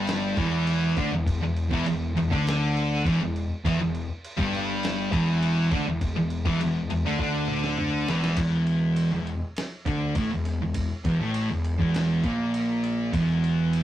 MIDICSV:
0, 0, Header, 1, 4, 480
1, 0, Start_track
1, 0, Key_signature, 1, "minor"
1, 0, Tempo, 593472
1, 1026, Time_signature, 4, 2, 24, 8
1, 11186, End_track
2, 0, Start_track
2, 0, Title_t, "Distorted electric guitar"
2, 0, Program_c, 0, 30
2, 0, Note_on_c, 0, 43, 96
2, 0, Note_on_c, 0, 55, 92
2, 296, Note_off_c, 0, 43, 0
2, 299, Note_off_c, 0, 55, 0
2, 300, Note_on_c, 0, 40, 95
2, 302, Note_on_c, 0, 52, 96
2, 776, Note_off_c, 0, 40, 0
2, 777, Note_off_c, 0, 52, 0
2, 783, Note_on_c, 0, 50, 90
2, 788, Note_on_c, 0, 62, 99
2, 898, Note_off_c, 0, 50, 0
2, 900, Note_off_c, 0, 62, 0
2, 901, Note_on_c, 0, 40, 77
2, 1096, Note_off_c, 0, 40, 0
2, 1141, Note_on_c, 0, 40, 83
2, 1336, Note_off_c, 0, 40, 0
2, 1378, Note_on_c, 0, 40, 101
2, 1382, Note_on_c, 0, 52, 106
2, 1492, Note_off_c, 0, 40, 0
2, 1497, Note_off_c, 0, 52, 0
2, 1502, Note_on_c, 0, 40, 66
2, 1696, Note_off_c, 0, 40, 0
2, 1749, Note_on_c, 0, 40, 76
2, 1868, Note_off_c, 0, 40, 0
2, 1872, Note_on_c, 0, 50, 91
2, 1872, Note_on_c, 0, 62, 100
2, 2462, Note_off_c, 0, 50, 0
2, 2462, Note_off_c, 0, 62, 0
2, 2476, Note_on_c, 0, 40, 97
2, 2477, Note_on_c, 0, 52, 98
2, 2584, Note_off_c, 0, 40, 0
2, 2585, Note_off_c, 0, 52, 0
2, 2605, Note_on_c, 0, 40, 79
2, 2787, Note_off_c, 0, 40, 0
2, 2962, Note_on_c, 0, 40, 93
2, 2965, Note_on_c, 0, 52, 110
2, 3067, Note_off_c, 0, 40, 0
2, 3068, Note_off_c, 0, 52, 0
2, 3078, Note_on_c, 0, 40, 82
2, 3264, Note_off_c, 0, 40, 0
2, 3553, Note_on_c, 0, 43, 89
2, 3561, Note_on_c, 0, 55, 100
2, 4141, Note_off_c, 0, 43, 0
2, 4145, Note_off_c, 0, 55, 0
2, 4155, Note_on_c, 0, 40, 96
2, 4157, Note_on_c, 0, 52, 106
2, 4622, Note_off_c, 0, 40, 0
2, 4623, Note_off_c, 0, 52, 0
2, 4633, Note_on_c, 0, 50, 84
2, 4638, Note_on_c, 0, 62, 101
2, 4741, Note_off_c, 0, 50, 0
2, 4744, Note_off_c, 0, 62, 0
2, 4753, Note_on_c, 0, 40, 81
2, 4940, Note_off_c, 0, 40, 0
2, 4994, Note_on_c, 0, 40, 74
2, 5180, Note_off_c, 0, 40, 0
2, 5224, Note_on_c, 0, 40, 94
2, 5229, Note_on_c, 0, 52, 105
2, 5336, Note_off_c, 0, 40, 0
2, 5339, Note_off_c, 0, 52, 0
2, 5356, Note_on_c, 0, 40, 70
2, 5541, Note_off_c, 0, 40, 0
2, 5585, Note_on_c, 0, 40, 68
2, 5701, Note_on_c, 0, 50, 87
2, 5703, Note_off_c, 0, 40, 0
2, 5708, Note_on_c, 0, 62, 104
2, 5811, Note_off_c, 0, 50, 0
2, 5816, Note_off_c, 0, 62, 0
2, 5821, Note_on_c, 0, 50, 85
2, 5825, Note_on_c, 0, 62, 112
2, 6534, Note_off_c, 0, 50, 0
2, 6536, Note_off_c, 0, 62, 0
2, 6542, Note_on_c, 0, 40, 96
2, 6546, Note_on_c, 0, 52, 99
2, 6774, Note_off_c, 0, 40, 0
2, 6776, Note_off_c, 0, 52, 0
2, 6784, Note_on_c, 0, 40, 92
2, 6789, Note_on_c, 0, 52, 95
2, 7370, Note_off_c, 0, 40, 0
2, 7378, Note_off_c, 0, 52, 0
2, 7380, Note_on_c, 0, 40, 71
2, 7572, Note_off_c, 0, 40, 0
2, 7975, Note_on_c, 0, 50, 99
2, 7982, Note_on_c, 0, 62, 103
2, 8211, Note_off_c, 0, 50, 0
2, 8214, Note_off_c, 0, 62, 0
2, 8219, Note_on_c, 0, 45, 90
2, 8227, Note_on_c, 0, 57, 90
2, 8333, Note_off_c, 0, 45, 0
2, 8336, Note_off_c, 0, 57, 0
2, 8341, Note_on_c, 0, 40, 76
2, 8533, Note_off_c, 0, 40, 0
2, 8588, Note_on_c, 0, 40, 72
2, 8777, Note_off_c, 0, 40, 0
2, 8945, Note_on_c, 0, 40, 87
2, 8950, Note_on_c, 0, 52, 98
2, 9056, Note_off_c, 0, 40, 0
2, 9058, Note_off_c, 0, 52, 0
2, 9058, Note_on_c, 0, 45, 96
2, 9068, Note_on_c, 0, 57, 111
2, 9292, Note_off_c, 0, 45, 0
2, 9298, Note_off_c, 0, 57, 0
2, 9314, Note_on_c, 0, 40, 64
2, 9500, Note_off_c, 0, 40, 0
2, 9546, Note_on_c, 0, 40, 93
2, 9548, Note_on_c, 0, 52, 95
2, 9897, Note_off_c, 0, 40, 0
2, 9898, Note_off_c, 0, 52, 0
2, 9902, Note_on_c, 0, 46, 97
2, 9908, Note_on_c, 0, 58, 108
2, 10616, Note_off_c, 0, 46, 0
2, 10620, Note_off_c, 0, 58, 0
2, 10624, Note_on_c, 0, 40, 79
2, 10632, Note_on_c, 0, 52, 109
2, 11186, Note_off_c, 0, 40, 0
2, 11186, Note_off_c, 0, 52, 0
2, 11186, End_track
3, 0, Start_track
3, 0, Title_t, "Picked electric bass"
3, 0, Program_c, 1, 34
3, 0, Note_on_c, 1, 31, 92
3, 270, Note_off_c, 1, 31, 0
3, 294, Note_on_c, 1, 28, 102
3, 748, Note_off_c, 1, 28, 0
3, 779, Note_on_c, 1, 38, 99
3, 889, Note_off_c, 1, 38, 0
3, 894, Note_on_c, 1, 28, 86
3, 1123, Note_off_c, 1, 28, 0
3, 1137, Note_on_c, 1, 28, 88
3, 1365, Note_off_c, 1, 28, 0
3, 1379, Note_on_c, 1, 28, 93
3, 1494, Note_off_c, 1, 28, 0
3, 1500, Note_on_c, 1, 28, 74
3, 1726, Note_off_c, 1, 28, 0
3, 1738, Note_on_c, 1, 28, 88
3, 1853, Note_off_c, 1, 28, 0
3, 1865, Note_on_c, 1, 38, 89
3, 2433, Note_off_c, 1, 38, 0
3, 2467, Note_on_c, 1, 28, 98
3, 2575, Note_off_c, 1, 28, 0
3, 2580, Note_on_c, 1, 28, 83
3, 2806, Note_off_c, 1, 28, 0
3, 2946, Note_on_c, 1, 28, 102
3, 3057, Note_off_c, 1, 28, 0
3, 3062, Note_on_c, 1, 28, 90
3, 3287, Note_off_c, 1, 28, 0
3, 3546, Note_on_c, 1, 31, 95
3, 4113, Note_off_c, 1, 31, 0
3, 4142, Note_on_c, 1, 28, 96
3, 4590, Note_off_c, 1, 28, 0
3, 4618, Note_on_c, 1, 38, 99
3, 4732, Note_off_c, 1, 38, 0
3, 4746, Note_on_c, 1, 28, 85
3, 4968, Note_off_c, 1, 28, 0
3, 4978, Note_on_c, 1, 28, 84
3, 5204, Note_off_c, 1, 28, 0
3, 5216, Note_on_c, 1, 28, 96
3, 5330, Note_off_c, 1, 28, 0
3, 5336, Note_on_c, 1, 28, 77
3, 5562, Note_off_c, 1, 28, 0
3, 5575, Note_on_c, 1, 28, 85
3, 5690, Note_off_c, 1, 28, 0
3, 5701, Note_on_c, 1, 38, 84
3, 5806, Note_off_c, 1, 38, 0
3, 5811, Note_on_c, 1, 38, 94
3, 6503, Note_off_c, 1, 38, 0
3, 6537, Note_on_c, 1, 28, 100
3, 6762, Note_off_c, 1, 28, 0
3, 6766, Note_on_c, 1, 28, 89
3, 7341, Note_off_c, 1, 28, 0
3, 7374, Note_on_c, 1, 28, 86
3, 7600, Note_off_c, 1, 28, 0
3, 7969, Note_on_c, 1, 38, 97
3, 8198, Note_off_c, 1, 38, 0
3, 8208, Note_on_c, 1, 33, 96
3, 8325, Note_off_c, 1, 33, 0
3, 8337, Note_on_c, 1, 28, 82
3, 8562, Note_off_c, 1, 28, 0
3, 8577, Note_on_c, 1, 28, 83
3, 8802, Note_off_c, 1, 28, 0
3, 8928, Note_on_c, 1, 28, 86
3, 9046, Note_off_c, 1, 28, 0
3, 9052, Note_on_c, 1, 33, 97
3, 9279, Note_off_c, 1, 33, 0
3, 9293, Note_on_c, 1, 28, 82
3, 9520, Note_off_c, 1, 28, 0
3, 9535, Note_on_c, 1, 28, 94
3, 9873, Note_off_c, 1, 28, 0
3, 9897, Note_on_c, 1, 34, 98
3, 10589, Note_off_c, 1, 34, 0
3, 10614, Note_on_c, 1, 28, 97
3, 11186, Note_off_c, 1, 28, 0
3, 11186, End_track
4, 0, Start_track
4, 0, Title_t, "Drums"
4, 59, Note_on_c, 9, 49, 84
4, 71, Note_on_c, 9, 38, 124
4, 140, Note_off_c, 9, 49, 0
4, 152, Note_off_c, 9, 38, 0
4, 300, Note_on_c, 9, 49, 64
4, 301, Note_on_c, 9, 36, 105
4, 381, Note_off_c, 9, 49, 0
4, 382, Note_off_c, 9, 36, 0
4, 542, Note_on_c, 9, 49, 88
4, 623, Note_off_c, 9, 49, 0
4, 782, Note_on_c, 9, 36, 114
4, 786, Note_on_c, 9, 49, 66
4, 863, Note_off_c, 9, 36, 0
4, 866, Note_off_c, 9, 49, 0
4, 1023, Note_on_c, 9, 36, 110
4, 1030, Note_on_c, 9, 49, 98
4, 1104, Note_off_c, 9, 36, 0
4, 1111, Note_off_c, 9, 49, 0
4, 1266, Note_on_c, 9, 49, 63
4, 1347, Note_off_c, 9, 49, 0
4, 1384, Note_on_c, 9, 36, 119
4, 1465, Note_off_c, 9, 36, 0
4, 1507, Note_on_c, 9, 49, 87
4, 1587, Note_off_c, 9, 49, 0
4, 1754, Note_on_c, 9, 49, 66
4, 1835, Note_off_c, 9, 49, 0
4, 1869, Note_on_c, 9, 36, 117
4, 1950, Note_off_c, 9, 36, 0
4, 1998, Note_on_c, 9, 49, 93
4, 2011, Note_on_c, 9, 38, 124
4, 2079, Note_off_c, 9, 49, 0
4, 2091, Note_off_c, 9, 38, 0
4, 2240, Note_on_c, 9, 49, 66
4, 2321, Note_off_c, 9, 49, 0
4, 2470, Note_on_c, 9, 36, 107
4, 2478, Note_on_c, 9, 49, 81
4, 2551, Note_off_c, 9, 36, 0
4, 2559, Note_off_c, 9, 49, 0
4, 2717, Note_on_c, 9, 49, 58
4, 2798, Note_off_c, 9, 49, 0
4, 2951, Note_on_c, 9, 36, 120
4, 2959, Note_on_c, 9, 49, 83
4, 3032, Note_off_c, 9, 36, 0
4, 3040, Note_off_c, 9, 49, 0
4, 3192, Note_on_c, 9, 49, 55
4, 3273, Note_off_c, 9, 49, 0
4, 3434, Note_on_c, 9, 49, 87
4, 3515, Note_off_c, 9, 49, 0
4, 3549, Note_on_c, 9, 36, 109
4, 3630, Note_off_c, 9, 36, 0
4, 3677, Note_on_c, 9, 49, 58
4, 3758, Note_off_c, 9, 49, 0
4, 3909, Note_on_c, 9, 49, 88
4, 3921, Note_on_c, 9, 38, 114
4, 3990, Note_off_c, 9, 49, 0
4, 4002, Note_off_c, 9, 38, 0
4, 4146, Note_on_c, 9, 36, 114
4, 4149, Note_on_c, 9, 49, 64
4, 4227, Note_off_c, 9, 36, 0
4, 4230, Note_off_c, 9, 49, 0
4, 4388, Note_on_c, 9, 49, 84
4, 4469, Note_off_c, 9, 49, 0
4, 4623, Note_on_c, 9, 36, 117
4, 4623, Note_on_c, 9, 49, 65
4, 4703, Note_off_c, 9, 49, 0
4, 4704, Note_off_c, 9, 36, 0
4, 4863, Note_on_c, 9, 49, 91
4, 4864, Note_on_c, 9, 36, 114
4, 4944, Note_off_c, 9, 49, 0
4, 4945, Note_off_c, 9, 36, 0
4, 5098, Note_on_c, 9, 49, 68
4, 5179, Note_off_c, 9, 49, 0
4, 5222, Note_on_c, 9, 36, 116
4, 5303, Note_off_c, 9, 36, 0
4, 5345, Note_on_c, 9, 49, 88
4, 5425, Note_off_c, 9, 49, 0
4, 5581, Note_on_c, 9, 49, 67
4, 5662, Note_off_c, 9, 49, 0
4, 5816, Note_on_c, 9, 36, 72
4, 5897, Note_off_c, 9, 36, 0
4, 6048, Note_on_c, 9, 47, 76
4, 6128, Note_off_c, 9, 47, 0
4, 6178, Note_on_c, 9, 38, 73
4, 6259, Note_off_c, 9, 38, 0
4, 6288, Note_on_c, 9, 45, 88
4, 6369, Note_off_c, 9, 45, 0
4, 6539, Note_on_c, 9, 38, 105
4, 6620, Note_off_c, 9, 38, 0
4, 6662, Note_on_c, 9, 38, 95
4, 6743, Note_off_c, 9, 38, 0
4, 6767, Note_on_c, 9, 51, 87
4, 6767, Note_on_c, 9, 57, 110
4, 6771, Note_on_c, 9, 36, 107
4, 6847, Note_off_c, 9, 51, 0
4, 6847, Note_off_c, 9, 57, 0
4, 6852, Note_off_c, 9, 36, 0
4, 7010, Note_on_c, 9, 51, 65
4, 7091, Note_off_c, 9, 51, 0
4, 7250, Note_on_c, 9, 51, 97
4, 7331, Note_off_c, 9, 51, 0
4, 7498, Note_on_c, 9, 51, 62
4, 7579, Note_off_c, 9, 51, 0
4, 7736, Note_on_c, 9, 51, 99
4, 7749, Note_on_c, 9, 38, 119
4, 7817, Note_off_c, 9, 51, 0
4, 7830, Note_off_c, 9, 38, 0
4, 7974, Note_on_c, 9, 36, 105
4, 7976, Note_on_c, 9, 51, 68
4, 8055, Note_off_c, 9, 36, 0
4, 8057, Note_off_c, 9, 51, 0
4, 8211, Note_on_c, 9, 51, 95
4, 8215, Note_on_c, 9, 36, 106
4, 8292, Note_off_c, 9, 51, 0
4, 8295, Note_off_c, 9, 36, 0
4, 8454, Note_on_c, 9, 51, 73
4, 8466, Note_on_c, 9, 38, 32
4, 8535, Note_off_c, 9, 51, 0
4, 8547, Note_off_c, 9, 38, 0
4, 8690, Note_on_c, 9, 51, 103
4, 8695, Note_on_c, 9, 36, 102
4, 8771, Note_off_c, 9, 51, 0
4, 8776, Note_off_c, 9, 36, 0
4, 8935, Note_on_c, 9, 36, 103
4, 8935, Note_on_c, 9, 51, 78
4, 9016, Note_off_c, 9, 36, 0
4, 9016, Note_off_c, 9, 51, 0
4, 9174, Note_on_c, 9, 51, 101
4, 9255, Note_off_c, 9, 51, 0
4, 9419, Note_on_c, 9, 51, 71
4, 9500, Note_off_c, 9, 51, 0
4, 9540, Note_on_c, 9, 36, 112
4, 9621, Note_off_c, 9, 36, 0
4, 9661, Note_on_c, 9, 51, 99
4, 9673, Note_on_c, 9, 38, 115
4, 9742, Note_off_c, 9, 51, 0
4, 9754, Note_off_c, 9, 38, 0
4, 9896, Note_on_c, 9, 51, 65
4, 9899, Note_on_c, 9, 36, 101
4, 9977, Note_off_c, 9, 51, 0
4, 9980, Note_off_c, 9, 36, 0
4, 10143, Note_on_c, 9, 51, 94
4, 10224, Note_off_c, 9, 51, 0
4, 10382, Note_on_c, 9, 51, 72
4, 10463, Note_off_c, 9, 51, 0
4, 10621, Note_on_c, 9, 36, 110
4, 10624, Note_on_c, 9, 51, 96
4, 10702, Note_off_c, 9, 36, 0
4, 10705, Note_off_c, 9, 51, 0
4, 10869, Note_on_c, 9, 51, 70
4, 10950, Note_off_c, 9, 51, 0
4, 11107, Note_on_c, 9, 51, 84
4, 11186, Note_off_c, 9, 51, 0
4, 11186, End_track
0, 0, End_of_file